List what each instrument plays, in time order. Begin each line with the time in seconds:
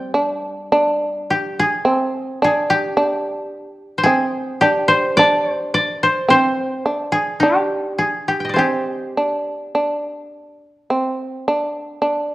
Already playing: koto G3 G4 C5 D5 G5, shamisen C4
0.14 shamisen D4
0.72 shamisen D4
1.30 koto G4
1.59 koto G#4
1.85 shamisen C4
2.42 shamisen D4, koto G#4
2.70 koto G4
2.97 shamisen D4
3.98 koto C5
4.04 shamisen C4, koto G#4
4.61 shamisen D4, koto G4
4.88 koto C5
5.17 shamisen D4, koto D5
5.51 koto C5
5.74 koto D5
6.03 koto C5
6.29 shamisen C4, koto C5
6.86 shamisen D4
7.12 koto G#4
7.40 shamisen D4, koto G4
7.99 koto G#4
8.28 koto G4
8.40 koto G5
8.45 koto D#5
8.49 koto D5
8.54 shamisen C4, koto G#4 C5
8.59 koto G4
9.17 shamisen D4
9.75 shamisen D4
10.90 shamisen C4
11.48 shamisen D4
12.02 shamisen D4